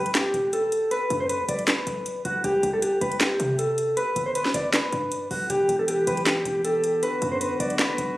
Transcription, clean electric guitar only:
0.00 0.10 B4 medium
0.15 0.51 G4 medium
0.53 0.89 A4 medium
0.91 1.19 B4 loud
1.20 1.27 C5 medium
1.29 1.44 B4 medium
1.49 1.63 D5 medium
1.68 2.22 B4 medium
2.25 2.39 F#4 medium
2.44 2.72 G4 loud
2.73 2.80 A4 medium
2.82 2.97 G4 medium
3.01 3.16 B4 medium
3.20 3.56 G4 medium
3.59 3.95 A4 medium
3.97 4.24 B4 loud
4.26 4.33 C5 medium
4.35 4.50 B4 medium
4.55 4.69 D5 medium
4.73 5.27 B4 medium
5.31 5.45 F#4 medium
5.50 5.77 G4 loud
5.79 5.86 A4 medium
5.88 6.02 G4 medium
6.07 6.22 B4 medium
6.26 6.62 G4 medium
6.65 7.01 A4 medium
7.03 7.30 B4 loud
7.32 7.39 C5 medium
7.41 7.55 B4 medium
7.60 7.75 D5 medium
7.79 8.18 B4 medium

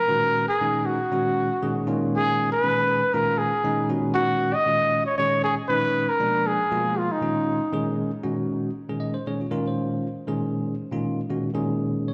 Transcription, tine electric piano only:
0.08 0.45 A#2 medium
0.08 0.46 D#3 medium
0.08 0.46 G#3 medium
0.08 0.46 C#4 medium
0.08 0.46 F#4 medium
0.61 0.98 A#2 medium
0.61 0.98 D#3 medium
0.61 0.97 G#3 medium
0.61 0.97 C#4 medium
0.61 0.98 D#4 medium
1.11 1.48 A#2 medium
1.11 1.48 D#3 medium
1.11 1.49 G#3 medium
1.11 1.48 C#4 medium
1.11 1.49 F#4 medium
1.62 1.86 A#2 medium
1.62 1.87 D#3 medium
1.62 1.86 G#3 medium
1.62 1.86 C#4 medium
1.62 1.88 G#4 medium
1.87 2.49 A#2 medium
1.87 2.49 D#3 medium
1.87 2.49 G#3 medium
1.87 2.49 C#4 medium
1.87 2.49 F4 loud
2.63 3.00 A#2 medium
2.63 3.01 D#3 medium
2.63 3.01 G#3 medium
2.63 3.01 C#4 medium
2.63 3.01 G#4 medium
3.14 3.51 A#2 medium
3.14 3.51 D#3 medium
3.14 3.51 G#3 medium
3.14 3.51 C#4 medium
3.14 3.51 F4 medium
3.64 3.88 A#2 medium
3.64 3.88 D#3 medium
3.64 3.88 G#3 medium
3.64 3.89 C#4 medium
3.64 3.90 D#4 medium
3.89 4.52 A#2 medium
3.89 4.52 D#3 medium
3.89 4.52 G#3 medium
3.89 4.52 C#4 medium
3.89 4.52 F#4 medium
4.66 5.04 A#2 medium
4.66 5.04 D#3 medium
4.66 5.04 G#3 medium
4.66 5.04 C#4 medium
4.66 5.04 F4 medium
5.18 5.56 A#2 medium
5.18 5.55 D#3 medium
5.18 5.55 G#3 medium
5.18 5.55 C#4 medium
5.18 5.56 G#4 medium
5.69 6.06 A#2 medium
5.69 6.07 D#3 medium
5.69 6.06 G#3 medium
5.69 6.07 C#4 medium
5.69 6.07 D#4 medium
6.20 6.57 B2 medium
6.20 6.57 F3 medium
6.20 6.57 G#3 medium
6.20 6.57 A#3 medium
6.20 6.57 D4 medium
6.71 7.08 B2 medium
6.71 7.08 F3 medium
6.71 7.08 G#3 medium
6.71 7.08 A#3 medium
6.71 7.09 F4 medium
7.22 7.59 A#2 medium
7.22 7.59 D#3 medium
7.22 7.59 G#3 medium
7.22 7.59 C#4 medium
7.22 7.59 F4 medium
7.73 8.10 A#2 medium
7.73 8.10 D#3 medium
7.73 8.10 G#3 medium
7.73 8.10 C#4 medium
7.73 8.10 G#4 loud
8.23 8.70 A#2 medium
8.23 8.70 D#3 medium
8.23 8.70 G#3 medium
8.23 8.70 C#4 medium
8.23 8.69 F#4 medium
8.89 9.16 A#2 medium
8.89 9.16 D#3 medium
8.89 9.16 G#3 medium
8.89 9.16 C#4 medium
8.89 9.16 G#4 medium
9.00 9.14 D#5 medium
9.14 9.26 C5 medium
9.26 9.45 A#2 medium
9.26 9.45 D#3 medium
9.26 9.45 G#3 medium
9.26 9.45 C#4 medium
9.26 9.45 G#4 medium
9.26 9.40 C#5 medium
9.41 9.50 F4 soft
9.51 10.06 A#2 medium
9.51 10.06 D#3 medium
9.51 10.06 G#3 medium
9.51 10.06 C#4 medium
9.51 10.06 F4 medium
9.51 9.65 A#4 medium
9.67 10.90 C5 medium
10.27 10.74 A#2 medium
10.27 10.74 D#3 medium
10.27 10.74 G#3 medium
10.27 10.74 C#4 medium
10.27 10.74 G#4 medium
10.91 11.19 A#2 medium
10.91 11.20 D#3 medium
10.91 11.20 G#3 medium
10.91 11.20 C#4 medium
10.91 11.20 F4 medium
11.30 11.49 A#2 medium
11.30 11.49 D#3 medium
11.30 11.49 G#3 medium
11.30 11.49 C#4 medium
11.30 11.49 F#4 medium
11.54 12.10 A#2 medium
11.54 12.09 D#3 medium
11.54 12.10 G#3 medium
11.54 12.10 C#4 medium
11.54 12.10 G#4 loud
12.08 12.14 C#5 medium

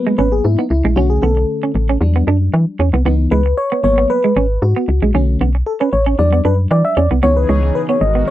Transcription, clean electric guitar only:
0.07 0.14 G#3 medium
0.19 0.27 C#4 medium
0.59 0.66 B3 medium
0.71 muted clean electric guitar stroke soft
0.85 0.92 G#3 medium
0.97 1.06 C#4 medium
1.23 1.32 B3 medium
1.37 muted clean electric guitar stroke soft
1.63 1.71 C#4 medium
1.75 muted clean electric guitar stroke soft
1.89 1.97 C#4 medium
2.02 muted clean electric guitar stroke soft
2.16 2.23 B3 medium
2.28 2.36 D4 medium
2.54 muted clean electric guitar stroke soft
2.80 2.88 C#4 medium
2.94 3.01 B3 medium
3.06 3.15 B3 loud
3.32 3.40 G#3 medium
3.46 muted clean electric guitar stroke soft
3.72 3.79 B3 medium
3.84 muted clean electric guitar stroke soft
3.98 4.05 B3 medium
4.10 muted clean electric guitar stroke soft
4.24 4.32 G#3 medium
4.37 4.45 C#4 medium
4.76 4.84 B3 medium
4.89 muted clean electric guitar stroke soft
5.03 5.10 G#3 medium
5.15 5.23 C#4 medium
5.41 5.49 B3 medium
5.55 muted clean electric guitar stroke soft
5.81 5.88 C#4 medium
5.93 muted clean electric guitar stroke soft
6.06 6.14 C#4 medium
6.19 muted clean electric guitar stroke soft
6.33 6.40 B3 medium
6.45 6.53 D4 medium
6.71 muted clean electric guitar stroke soft
6.97 7.05 C#4 medium
7.11 7.18 B3 medium
7.23 7.31 B3 medium
7.49 7.58 G#3 medium
7.63 muted clean electric guitar stroke soft
7.89 7.97 B3 medium
8.01 muted clean electric guitar stroke soft
8.15 8.23 B3 medium

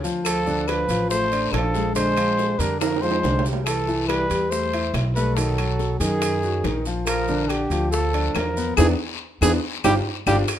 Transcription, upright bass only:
0.00 0.83 D2 medium
0.89 1.49 A1 medium
1.52 2.53 A#1 medium
2.59 3.19 F2 medium
3.23 4.24 C2 medium
4.30 4.90 E2 medium
4.94 5.94 B1 medium
6.00 6.60 F#2 medium
6.64 7.65 A#1 medium
7.70 8.31 D2 medium
8.34 8.75 E2 medium
8.78 8.94 E2 loud
9.41 9.57 E2 medium
9.84 10.00 G1 medium
10.26 10.43 G1 medium

